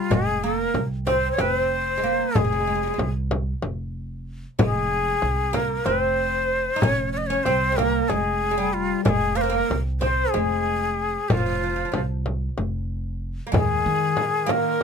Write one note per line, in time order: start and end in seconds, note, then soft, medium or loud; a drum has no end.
0.00 0.10 G3 medium
0.00 0.15 F4 medium
0.10 0.64 F1 medium
0.10 0.43 G#3 medium
0.10 0.45 G#4 medium
0.10 frame drum medium
0.44 0.78 A#3 medium
0.44 0.80 A#4 medium
0.74 1.28 C2 medium
0.74 frame drum medium
1.07 1.38 C4 medium
1.07 1.30 C5 medium
1.07 frame drum medium
1.32 1.42 C#5 medium
1.38 2.19 F1 medium
1.38 1.92 C4 medium
1.38 1.57 B4 medium
1.38 frame drum medium
1.57 2.38 C5 medium
1.97 2.03 G#3 soft
2.04 2.35 A#3 medium
2.35 2.89 F1 medium
2.35 2.42 G#3 medium
2.35 3.07 G#4 medium
2.35 frame drum medium
2.44 2.50 G#3 soft
2.53 2.58 G#3 soft
2.60 2.66 G#3 soft
2.67 2.73 G#3 soft
2.75 2.81 G#3 soft
2.83 2.86 G#3 soft
2.87 2.93 G#3 soft
2.94 3.01 G#3 soft
2.98 3.52 C2 medium
2.98 frame drum medium
3.31 frame drum medium
3.62 4.43 F1 medium
3.62 frame drum medium
4.59 5.12 F1 medium
4.59 5.53 G#3 medium
4.59 5.56 G#4 medium
4.59 frame drum medium
5.22 5.76 C2 medium
5.22 frame drum medium
5.53 5.83 A#3 medium
5.53 5.87 A#4 medium
5.53 frame drum medium
5.85 6.66 F1 medium
5.85 6.76 C4 medium
5.85 6.83 C5 medium
5.85 frame drum medium
6.76 6.82 D#4 medium
6.81 7.36 F1 medium
6.81 7.29 C#4 medium
6.81 7.12 C#5 medium
6.81 frame drum medium
7.12 7.19 C#5 medium
7.17 7.28 D#5 medium
7.27 7.46 C#4 medium
7.27 7.45 C#5 medium
7.43 8.00 C2 medium
7.43 7.72 C4 medium
7.43 7.78 C5 medium
7.43 frame drum medium
7.72 7.78 G#3 soft
7.76 8.09 A#3 medium
7.76 8.10 A#4 medium
7.76 frame drum medium
8.09 8.91 F1 medium
8.09 8.50 G#3 medium
8.09 8.75 G#4 medium
8.09 frame drum medium
8.51 8.57 G#3 medium
8.58 9.05 G3 medium
8.73 9.03 F4 medium
9.04 9.60 F1 medium
9.04 9.35 G#3 medium
9.04 9.10 A#4 medium
9.04 frame drum medium
9.09 9.38 G#4 medium
9.35 9.43 A#3 medium
9.35 9.42 C5 medium
9.41 9.51 C4 medium
9.41 9.74 A#4 medium
9.50 9.72 A#3 medium
9.70 10.23 C2 medium
9.70 frame drum medium
10.00 10.34 C4 medium
10.00 10.32 C5 medium
10.00 frame drum medium
10.30 11.25 G#3 medium
10.30 11.30 G#4 medium
10.34 11.15 F1 medium
10.34 frame drum medium
11.28 11.83 F1 medium
11.28 11.36 F3 medium
11.28 12.01 F4 medium
11.28 11.32 G4 medium
11.28 frame drum medium
11.37 11.44 F3 soft
11.46 11.52 F3 soft
11.55 11.61 F3 soft
11.64 11.68 F3 soft
11.70 11.75 F3 soft
11.76 11.82 F3 soft
11.85 11.91 F3 soft
11.92 12.47 C2 medium
11.92 11.98 F3 soft
11.92 frame drum medium
12.26 frame drum medium
12.58 13.38 F1 medium
12.58 frame drum medium
13.47 13.51 A#3 medium
13.52 13.80 D#2 medium
13.52 14.83 D#3 medium
13.52 14.46 G#3 medium
13.52 14.52 G#4 medium
13.52 darbuka dum medium
13.52 frame drum medium
13.86 14.12 D#3 medium
14.17 darbuka tek medium
14.17 frame drum medium
14.46 14.83 A#3 medium
14.46 darbuka tek medium
14.46 frame drum medium
14.51 14.83 A#4 medium